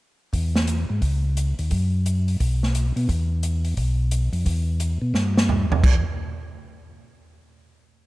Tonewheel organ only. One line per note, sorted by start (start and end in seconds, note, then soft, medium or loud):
0.33 0.86 E2 medium
0.90 1.01 G#2 medium
1.02 1.54 C#2 medium
1.59 1.70 D#2 medium
1.71 2.37 F#2 medium
2.40 2.93 B1 medium
2.96 3.08 B2 medium
3.09 3.74 E2 medium
3.78 4.30 B1 medium
4.33 4.45 F2 medium
4.46 4.98 E2 medium
5.02 5.14 B2 medium
5.14 5.67 G2 medium
5.70 5.82 F2 medium
5.84 6.04 E2 medium